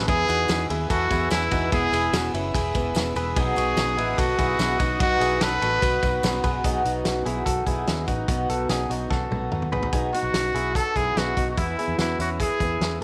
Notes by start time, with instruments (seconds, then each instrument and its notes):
Already playing: twelve-string acoustic guitar E3
0.07 fingered electric bass E2, twelve-string acoustic guitar E3 B3 E4 G#4, clean electric guitar E4 G#4, trumpet G#4, analog synth pad B4 G#5 E6, kick, ride
0.29 fingered electric bass E2, clean electric guitar D#4 F#4, ride, tambourine
0.48 fingered electric bass E2, snare, ride, tambourine
0.69 fingered electric bass D#2, twelve-string acoustic guitar E3 B3 E4 G#4, clean electric guitar E4 G#4, ride
0.90 fingered electric bass E2, clean electric guitar E4 A4, trumpet F#4, kick, ride, tambourine
1.10 fingered electric bass E2, twelve-string acoustic guitar E3 B3 E4 G#4, clean electric guitar E4 G#4, kick, ride, tambourine
1.30 fingered electric bass E2, twelve-string acoustic guitar E3 B3 E4, trumpet E4, snare, ride, tambourine
1.50 fingered electric bass E2, twelve-string acoustic guitar E3 B3 E4 G#4, clean electric guitar D#4 F#4, kick, ride, tambourine
1.71 fingered electric bass E1, twelve-string acoustic guitar E3 B3 E4 G#4, clean electric guitar B3 E4, trumpet G#4, kick, ride, tambourine
1.92 fingered electric bass E1, clean electric guitar E4 G#4, ride, tambourine
2.13 fingered electric bass E1, clean electric guitar B3 F#4, snare, ride, tambourine
2.34 fingered electric bass F#1, twelve-string acoustic guitar E3 B3 E4 G#4, clean electric guitar C#4 E4, ride, tambourine
2.54 fingered electric bass E1, clean electric guitar E4 G#4, kick, ride, tambourine
2.74 fingered electric bass E1, twelve-string acoustic guitar E3 B3 E4 G#4, kick, ride, tambourine
2.95 fingered electric bass E1, twelve-string acoustic guitar E3 B3 E4 G#4, snare, ride, tambourine
3.15 fingered electric bass E1, twelve-string acoustic guitar E3 B3 E4 G#4, clean electric guitar G#4 B4, ride, tambourine
3.36 fingered electric bass B1, twelve-string acoustic guitar B2 F#3 B3 D#4 F#4, clean electric guitar D#4 G#4, trumpet G#4, analog synth pad D#5 F#5 D#6, kick, ride, tambourine
3.56 fingered electric bass B1, clean electric guitar D#4 F#4, ride, tambourine
3.77 fingered electric bass B1, snare, ride, tambourine
3.97 fingered electric bass A1, twelve-string acoustic guitar F#3 B3 D#4 F#4, clean electric guitar E4 G#4, ride
4.18 fingered electric bass B1, trumpet F#4, clean electric guitar F#4 A4, kick, ride, tambourine
4.38 fingered electric bass B1, twelve-string acoustic guitar F#3 B3 D#4 F#4, clean electric guitar E4 G#4, kick, ride, tambourine
4.59 fingered electric bass B1, twelve-string acoustic guitar F#3 B3 D#4 F#4, snare, ride, tambourine
4.79 fingered electric bass B1, twelve-string acoustic guitar F#3 B3 D#4 F#4, clean electric guitar D#4 F#4, kick, ride, tambourine
5.00 fingered electric bass B1, twelve-string acoustic guitar B2 F#3 B3 D#4 F#4, clean electric guitar D#4 F#4, trumpet F#4, kick, ride
5.20 fingered electric bass B1, clean electric guitar E4 G#4, ride, tambourine
5.41 fingered electric bass B1, clean electric guitar F#4 A4, trumpet B4, snare, ride, tambourine
5.62 fingered electric bass A1, twelve-string acoustic guitar F#3 B3 D#4 F#4, clean electric guitar F#4 A4, ride, tambourine
5.82 fingered electric bass B1, clean electric guitar F#4 B4, kick, ride, tambourine
6.02 fingered electric bass B1, twelve-string acoustic guitar F#3 B3 D#4 F#4, kick, ride, tambourine
6.23 fingered electric bass B1, twelve-string acoustic guitar F#3 B3 D#4 F#4, snare, ride, tambourine
6.43 fingered electric bass B1, twelve-string acoustic guitar F#3 B3 D#4 F#4, clean electric guitar G#4 B4, kick, ride, tambourine
6.64 fingered electric bass B1, twelve-string acoustic guitar B2 F#3 B3 D#4 F#4, clean electric guitar D#4 G#4, kick, closed hi-hat
6.85 fingered electric bass B1, clean electric guitar D#4 F#4, closed hi-hat
7.05 fingered electric bass B1, snare, closed hi-hat
7.24 fingered electric bass B1, twelve-string acoustic guitar F#3 B3 D#4 F#4, clean electric guitar E4 G#4, closed hi-hat
7.46 fingered electric bass B1, clean electric guitar F#4 A4, kick, closed hi-hat
7.66 fingered electric bass B1, twelve-string acoustic guitar F#3 B3 D#4 F#4, clean electric guitar E4 G#4, kick, closed hi-hat
7.86 fingered electric bass D#2, twelve-string acoustic guitar F#3 B3 D#4 F#4, snare, closed hi-hat
8.07 fingered electric bass A1, twelve-string acoustic guitar F#3 B3 D#4 F#4, clean electric guitar D#4 F#4, kick, closed hi-hat
8.28 fingered electric bass B1, twelve-string acoustic guitar B2 F#3 B3 D#4 F#4, clean electric guitar D#4 F#4, kick, closed hi-hat
8.49 fingered electric bass B1, clean electric guitar F#4 A4, closed hi-hat
8.69 fingered electric bass B1, clean electric guitar D#4 G#4, snare, closed hi-hat
8.89 fingered electric bass B1, twelve-string acoustic guitar F#3 B3 D#4 F#4, clean electric guitar D#4 F#4, closed hi-hat
9.10 fingered electric bass B1, clean electric guitar F#4 A4, kick, snare
9.31 fingered electric bass B1, twelve-string acoustic guitar F#3 B3 D#4 F#4, high tom
9.51 fingered electric bass D#2, twelve-string acoustic guitar F#3 B3 D#4 F#4, mid tom
9.62 mid tom
9.71 fingered electric bass A1, twelve-string acoustic guitar F#3 B3 D#4 F#4, clean electric guitar G#4 B4, floor tom
9.83 floor tom
9.93 fingered electric bass B1, twelve-string acoustic guitar B2 F#3 B3 D#4 F#4, clean electric guitar D#4 G#4, kick, closed hi-hat
10.13 twelve-string acoustic guitar F#3 B3 D#4 F#4, clean electric guitar D#4 F#4, trumpet F#4, closed hi-hat
10.23 fingered electric bass B1
10.33 fingered electric bass B1, snare, closed hi-hat
10.54 fingered electric bass B1, twelve-string acoustic guitar F#3 B3 D#4 F#4, clean electric guitar E4 G#4, closed hi-hat
10.75 clean electric guitar F#4 A4, trumpet A4, kick, closed hi-hat
10.95 fingered electric bass B1, twelve-string acoustic guitar F#3 B3 D#4 F#4, clean electric guitar E4 G#4, trumpet G#4, kick, closed hi-hat
11.16 fingered electric bass B1, twelve-string acoustic guitar F#3 B3 D#4 F#4, trumpet F#4, snare, closed hi-hat
11.37 fingered electric bass B1, twelve-string acoustic guitar F#3 B3 D#4 F#4, clean electric guitar D#4 F#4, kick, closed hi-hat
11.51 trumpet F#4
11.57 fingered electric bass E2, twelve-string acoustic guitar E3 B3 E4 G#4, clean electric guitar B3 E4, trumpet E4, kick, closed hi-hat
11.78 twelve-string acoustic guitar E3 B3 E4 G#4, clean electric guitar E4 G#4, closed hi-hat
11.88 fingered electric bass E2
11.98 fingered electric bass E2, clean electric guitar B3 F#4, trumpet E4, snare, closed hi-hat
12.19 fingered electric bass E2, twelve-string acoustic guitar E3 B3 E4 G#4, clean electric guitar C#4 E4, trumpet F#4, closed hi-hat
12.40 clean electric guitar E4 G#4, trumpet G#4, kick, closed hi-hat
12.60 fingered electric bass E2, twelve-string acoustic guitar E3 B3 E4 G#4, kick, closed hi-hat
12.80 fingered electric bass E2, twelve-string acoustic guitar E3 B3 E4, snare, closed hi-hat
12.85 twelve-string acoustic guitar G#4